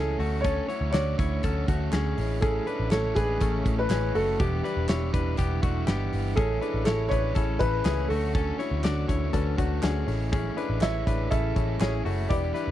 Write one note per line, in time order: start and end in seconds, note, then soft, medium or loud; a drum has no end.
0.00 0.15 C#2 medium
0.00 0.19 A2 medium
0.00 0.20 E3 medium
0.00 0.20 G#3 medium
0.00 0.19 C#4 medium
0.00 0.20 C#4 medium
0.00 0.18 E4 loud
0.00 0.19 G#4 medium
0.00 0.45 A4 medium
0.18 0.60 D2 loud
0.18 0.45 A3 medium
0.18 0.43 A3 soft
0.18 0.44 C#4 soft
0.18 0.44 F#4 medium
0.18 open hi-hat medium
0.41 0.69 D3 medium
0.41 0.69 A3 medium
0.41 0.68 A4 loud
0.41 0.88 C#5 loud
0.41 kick loud
0.41 closed hi-hat loud
0.45 0.69 C#4 medium
0.45 0.70 C#4 medium
0.45 0.67 F#4 loud
0.68 0.92 A3 soft
0.68 0.93 C#4 soft
0.68 0.94 E4 medium
0.68 0.94 F#4 medium
0.68 0.93 C#5 medium
0.68 closed hi-hat medium
0.81 0.91 D2 loud
0.91 1.14 D2 loud
0.91 1.41 D3 medium
0.91 1.43 A3 medium
0.91 1.43 C#4 medium
0.91 1.19 F#4 medium
0.91 1.63 C#5 medium
0.91 1.18 D5 medium
0.91 snare loud
0.91 clap medium
0.91 closed hi-hat loud
0.95 1.44 F#4 medium
1.19 1.39 D2 loud
1.19 1.44 E4 medium
1.19 1.43 C#5 medium
1.19 kick loud
1.19 closed hi-hat medium
1.42 1.64 D2 loud
1.42 1.68 D3 medium
1.42 1.68 A3 medium
1.42 1.68 C#4 medium
1.42 1.69 C#4 medium
1.42 1.66 F#4 medium
1.42 1.68 A4 medium
1.42 kick medium
1.42 closed hi-hat medium
1.67 1.89 D2 medium
1.67 1.93 A3 medium
1.67 1.92 A3 medium
1.67 1.92 C#4 medium
1.67 1.92 F#4 medium
1.67 kick medium
1.67 closed hi-hat medium
1.92 2.13 D2 medium
1.92 2.17 D3 loud
1.92 2.18 A3 loud
1.92 2.18 C#4 loud
1.92 2.40 C#4 medium
1.92 2.17 F#4 loud
1.92 2.39 G#4 loud
1.92 snare loud
1.92 clap loud
1.92 closed hi-hat medium
2.17 2.58 A1 loud
2.17 2.42 G#3 soft
2.17 2.42 C#4 medium
2.17 2.42 E4 medium
2.17 open hi-hat medium
2.41 2.67 A2 medium
2.41 2.67 E3 medium
2.41 2.67 G#3 medium
2.41 2.67 C#4 medium
2.41 2.65 E4 medium
2.41 2.67 G#4 loud
2.41 2.87 A4 medium
2.41 kick loud
2.41 closed hi-hat medium
2.66 2.91 G#3 soft
2.66 2.92 C#4 soft
2.66 2.92 D4 medium
2.66 2.91 E4 medium
2.66 2.91 B4 medium
2.66 closed hi-hat medium
2.80 2.90 A1 medium
2.91 3.12 A1 loud
2.91 3.41 A2 medium
2.91 3.39 E3 medium
2.91 3.40 G#3 medium
2.91 3.40 C#4 medium
2.91 3.17 E4 medium
2.91 3.42 E4 medium
2.91 3.14 A4 medium
2.91 3.16 C#5 medium
2.91 snare loud
2.91 clap medium
2.91 closed hi-hat loud
3.15 3.37 A1 loud
3.15 3.41 D4 medium
3.15 3.74 G#4 loud
3.15 3.41 B4 medium
3.15 kick loud
3.15 closed hi-hat medium
3.40 3.61 A1 loud
3.40 3.65 E3 medium
3.40 3.66 G#3 medium
3.40 3.87 A3 loud
3.40 3.65 C#4 medium
3.40 3.88 C#4 medium
3.40 3.63 E4 medium
3.40 kick medium
3.40 closed hi-hat medium
3.65 3.86 A1 loud
3.65 3.89 G#3 soft
3.65 3.89 C#4 soft
3.65 3.90 E4 medium
3.65 kick medium
3.65 closed hi-hat medium
3.79 4.13 B4 loud
3.89 4.10 A1 medium
3.89 4.14 A2 medium
3.89 4.15 E3 medium
3.89 4.15 G#3 medium
3.89 4.15 C#4 loud
3.89 4.16 C#4 medium
3.89 4.13 E4 medium
3.89 4.14 G#4 medium
3.89 snare loud
3.89 clap loud
3.89 closed hi-hat loud
4.14 4.36 F#1 loud
4.14 4.40 G#3 soft
4.14 4.40 A3 medium
4.14 4.40 C#4 soft
4.14 4.40 E4 medium
4.14 4.40 F#4 medium
4.14 4.38 A4 loud
4.14 open hi-hat medium
4.40 4.60 E1 loud
4.40 4.64 E2 medium
4.40 4.65 B2 medium
4.40 4.65 E3 medium
4.40 4.64 G3 medium
4.40 4.65 B3 medium
4.40 4.64 D4 medium
4.40 4.62 E4 loud
4.40 4.64 G4 loud
4.40 5.84 G4 medium
4.40 kick loud
4.40 closed hi-hat medium
4.63 4.88 E3 soft
4.63 4.88 G3 soft
4.63 4.89 D4 medium
4.63 4.89 D4 soft
4.63 4.89 E4 medium
4.63 4.89 B4 medium
4.63 snare soft
4.63 closed hi-hat medium
4.77 4.87 E1 loud
4.88 5.09 E1 loud
4.88 5.38 E2 medium
4.88 5.38 B2 medium
4.88 5.37 E3 medium
4.88 5.38 G3 medium
4.88 5.39 D4 medium
4.88 5.14 E4 medium
4.88 5.41 E4 medium
4.88 5.13 C#5 medium
4.88 snare loud
4.88 clap medium
4.88 closed hi-hat loud
5.14 5.34 E1 loud
5.14 5.39 D4 medium
5.14 5.38 B4 medium
5.14 kick medium
5.14 closed hi-hat medium
5.37 5.59 E1 loud
5.37 5.63 E3 medium
5.37 5.63 G3 medium
5.37 5.64 B3 medium
5.37 5.62 D4 medium
5.37 5.61 E4 medium
5.37 5.62 G4 loud
5.37 kick medium
5.37 closed hi-hat medium
5.62 5.83 E1 medium
5.62 5.87 E3 medium
5.62 5.88 G3 medium
5.62 5.88 A3 medium
5.62 5.88 D4 medium
5.62 5.87 E4 medium
5.62 5.86 F#4 medium
5.62 kick loud
5.62 closed hi-hat medium
5.87 6.08 G1 medium
5.87 6.13 E2 loud
5.87 6.13 B2 medium
5.87 6.13 E3 medium
5.87 6.13 G3 loud
5.87 6.34 B3 medium
5.87 6.12 D4 loud
5.87 6.11 E4 loud
5.87 6.34 G4 medium
5.87 snare loud
5.87 clap loud
5.87 closed hi-hat medium
6.12 6.33 G1 medium
6.12 6.36 E3 soft
6.12 6.38 G3 medium
6.12 6.38 D4 medium
6.12 6.37 E4 medium
6.12 open hi-hat medium
6.35 6.58 A1 loud
6.35 6.62 A2 medium
6.35 6.62 E3 medium
6.35 6.62 G#3 medium
6.35 6.62 C#4 medium
6.35 6.59 E4 loud
6.35 6.60 E4 medium
6.35 6.61 G#4 loud
6.35 6.59 G#4 loud
6.35 6.83 A4 loud
6.35 6.59 A4 loud
6.35 6.59 C#5 loud
6.35 kick loud
6.35 closed hi-hat loud
6.61 6.87 G#3 soft
6.61 6.87 C#4 soft
6.61 6.87 D4 medium
6.61 6.87 E4 medium
6.61 6.84 E4 medium
6.61 6.84 G#4 medium
6.61 6.84 A4 medium
6.61 6.86 B4 medium
6.61 6.84 C#5 medium
6.61 closed hi-hat medium
6.74 6.84 A1 loud
6.85 7.07 A1 loud
6.85 7.36 A2 medium
6.85 7.35 E3 medium
6.85 7.36 G#3 medium
6.85 7.38 C#4 medium
6.85 7.09 E4 medium
6.85 7.11 E4 medium
6.85 7.09 G#4 medium
6.85 7.09 A4 loud
6.85 7.09 A4 medium
6.85 7.10 C#5 loud
6.85 7.09 E5 medium
6.85 snare loud
6.85 clap medium
6.85 closed hi-hat loud
6.89 7.37 E4 loud
7.09 7.32 A1 loud
7.09 7.36 D4 medium
7.09 7.34 E4 medium
7.09 7.34 G#4 medium
7.09 7.34 A4 medium
7.09 7.35 B4 medium
7.09 7.61 C#5 loud
7.09 7.34 C#5 medium
7.09 kick medium
7.09 closed hi-hat medium
7.35 7.56 A1 loud
7.35 7.61 E3 medium
7.35 7.61 G#3 medium
7.35 7.83 C#4 medium
7.35 7.61 C#4 medium
7.35 7.58 E4 loud
7.35 7.60 E4 medium
7.35 7.59 G#4 medium
7.35 7.82 A4 medium
7.35 7.59 A4 medium
7.35 7.59 C#5 medium
7.35 kick medium
7.35 closed hi-hat medium
7.59 7.81 A1 medium
7.59 7.86 C#4 medium
7.59 7.83 E4 medium
7.59 7.86 E4 medium
7.59 7.82 G#4 medium
7.59 7.83 A4 medium
7.59 8.06 B4 loud
7.59 7.83 E5 medium
7.59 kick medium
7.59 closed hi-hat medium
7.64 7.86 G#3 soft
7.85 8.06 C#2 loud
7.85 8.10 A2 medium
7.85 8.11 E3 loud
7.85 8.11 G#3 medium
7.85 8.11 C#4 medium
7.85 8.10 C#4 medium
7.85 8.07 E4 medium
7.85 8.09 E4 medium
7.85 8.10 G#4 medium
7.85 8.07 G#4 medium
7.85 8.07 A4 medium
7.85 8.07 C#5 medium
7.85 snare loud
7.85 clap loud
7.85 closed hi-hat medium
8.08 8.51 D2 loud
8.08 8.35 A3 medium
8.08 8.35 C#4 medium
8.08 8.54 D4 medium
8.08 8.35 F#4 medium
8.08 8.54 F#4 medium
8.08 8.34 F#4 medium
8.08 8.55 A4 loud
8.08 8.54 A4 medium
8.08 8.54 C#5 medium
8.08 open hi-hat medium
8.13 8.34 A3 soft
8.34 8.59 D3 medium
8.34 8.60 A3 medium
8.34 8.60 C#4 medium
8.34 8.58 F#4 medium
8.34 8.59 A4 loud
8.34 kick loud
8.34 closed hi-hat medium
8.59 8.84 A3 soft
8.59 8.85 C#4 soft
8.59 8.81 D4 medium
8.59 8.85 E4 medium
8.59 8.81 F#4 medium
8.59 8.84 F#4 medium
8.59 8.81 A4 medium
8.59 8.81 C#5 medium
8.59 8.84 C#5 medium
8.59 snare soft
8.59 closed hi-hat medium
8.71 8.82 D2 medium
8.84 9.04 D2 loud
8.84 9.32 D3 loud
8.84 9.34 A3 loud
8.84 9.35 C#4 loud
8.84 9.06 D4 medium
8.84 9.06 F#4 medium
8.84 9.09 F#4 medium
8.84 9.35 F#4 medium
8.84 9.06 A4 medium
8.84 9.06 D5 loud
8.84 9.08 D5 loud
8.84 snare loud
8.84 clap medium
8.84 closed hi-hat loud
9.08 9.29 D2 medium
9.08 9.31 D4 medium
9.08 9.33 E4 medium
9.08 9.31 F#4 medium
9.08 9.31 A4 medium
9.08 9.33 C#5 medium
9.08 9.31 C#5 loud
9.08 kick medium
9.08 closed hi-hat medium
9.33 9.54 D2 loud
9.33 9.58 D3 medium
9.33 9.59 A3 medium
9.33 9.59 C#4 medium
9.33 9.58 C#4 medium
9.33 9.55 D4 loud
9.33 9.55 F#4 loud
9.33 9.57 F#4 medium
9.33 9.58 A4 medium
9.33 9.55 A4 loud
9.33 9.56 B4 loud
9.33 kick medium
9.33 closed hi-hat medium
9.58 9.78 D2 loud
9.58 9.83 A3 medium
9.58 9.82 A3 medium
9.58 9.83 C#4 medium
9.58 9.80 D4 loud
9.58 9.83 F#4 medium
9.58 9.80 F#4 medium
9.58 9.80 A4 loud
9.58 9.80 C#5 loud
9.58 kick medium
9.58 closed hi-hat medium
9.82 10.04 D2 medium
9.82 10.08 D3 medium
9.82 10.08 A3 loud
9.82 10.30 C#4 medium
9.82 10.08 C#4 loud
9.82 10.05 D4 loud
9.82 10.05 F#4 medium
9.82 10.06 F#4 loud
9.82 10.30 G#4 loud
9.82 10.05 A4 medium
9.82 10.05 E5 medium
9.82 snare loud
9.82 clap loud
9.82 closed hi-hat medium
10.07 10.48 A1 loud
10.07 10.32 G#3 medium
10.07 10.33 C#4 medium
10.07 10.32 E4 medium
10.07 10.51 E4 medium
10.07 10.51 G#4 medium
10.07 10.51 A4 medium
10.07 10.51 C#5 loud
10.07 open hi-hat medium
10.32 10.57 A2 loud
10.32 10.57 E3 medium
10.32 10.58 G#3 loud
10.32 10.58 C#4 medium
10.32 10.57 C#4 loud
10.32 10.56 E4 loud
10.32 10.57 G#4 loud
10.32 kick loud
10.32 closed hi-hat medium
10.57 10.82 G#3 medium
10.57 10.83 C#4 medium
10.57 10.82 D4 medium
10.57 10.79 E4 loud
10.57 10.82 E4 medium
10.57 10.79 G#4 medium
10.57 10.79 A4 medium
10.57 10.82 B4 medium
10.57 10.79 C#5 loud
10.57 closed hi-hat medium
10.70 10.80 A1 medium
10.81 11.02 A1 loud
10.81 11.32 A2 medium
10.81 11.30 E3 medium
10.81 11.31 G#3 medium
10.81 11.31 C#4 medium
10.81 11.03 E4 medium
10.81 11.07 E4 medium
10.81 11.34 E4 medium
10.81 11.03 G#4 medium
10.81 11.03 A4 medium
10.81 11.03 B4 medium
10.81 11.06 C#5 loud
10.81 11.29 E5 loud
10.81 snare loud
10.81 clap medium
10.81 closed hi-hat loud
11.06 11.27 A1 loud
11.06 11.31 D4 medium
11.06 11.28 E4 medium
11.06 11.28 G#4 medium
11.06 11.28 A4 medium
11.06 11.30 B4 medium
11.06 11.28 C#5 medium
11.06 kick medium
11.06 closed hi-hat medium
11.31 11.52 A1 loud
11.31 11.56 E3 medium
11.31 11.56 G#3 medium
11.31 11.78 C#4 medium
11.31 11.56 C#4 medium
11.31 11.53 E4 medium
11.31 11.54 E4 medium
11.31 11.53 G#4 medium
11.31 11.78 A4 loud
11.31 11.53 A4 medium
11.31 11.53 C#5 loud
11.31 11.82 E5 medium
11.31 kick medium
11.31 closed hi-hat medium
11.55 11.76 A1 medium
11.55 11.80 G#3 soft
11.55 11.80 C#4 medium
11.55 11.80 E4 medium
11.55 11.78 E4 medium
11.55 11.78 G#4 medium
11.55 11.78 A4 medium
11.55 11.78 C#5 medium
11.55 kick medium
11.55 closed hi-hat medium
11.80 12.01 A1 loud
11.80 12.05 A2 medium
11.80 12.05 E3 medium
11.80 12.06 G#3 medium
11.80 12.05 C#4 medium
11.80 12.06 C#4 medium
11.80 12.03 E4 medium
11.80 12.04 E4 loud
11.80 12.05 G#4 medium
11.80 12.03 G#4 medium
11.80 12.03 A4 medium
11.80 12.31 C#5 medium
11.80 12.03 C#5 medium
11.80 snare loud
11.80 clap loud
11.80 closed hi-hat medium
12.05 12.26 F#1 medium
12.05 12.31 G#3 soft
12.05 12.31 A3 medium
12.05 12.31 C#4 medium
12.05 12.30 E4 medium
12.05 12.27 E4 medium
12.05 12.30 F#4 medium
12.05 12.27 G#4 medium
12.05 12.28 A4 medium
12.05 12.28 C#5 medium
12.05 open hi-hat medium
12.29 12.51 E1 loud
12.29 12.55 E2 medium
12.29 12.55 B2 medium
12.29 12.55 E3 medium
12.29 12.55 G3 medium
12.29 12.55 B3 medium
12.29 12.55 D4 medium
12.29 12.52 E4 loud
12.29 12.54 E4 medium
12.29 12.54 G4 loud
12.29 12.52 G4 loud
12.29 12.52 B4 loud
12.29 12.71 D5 medium
12.29 12.52 D5 loud
12.29 kick loud
12.29 closed hi-hat medium
12.54 12.71 E3 soft
12.54 12.71 G3 soft
12.54 12.71 D4 medium
12.54 12.71 D4 soft
12.54 12.71 E4 medium
12.54 12.71 E4 soft
12.54 12.71 G4 medium
12.54 12.71 B4 medium
12.54 12.71 D5 medium
12.54 snare soft
12.54 closed hi-hat medium
12.68 12.71 E1 loud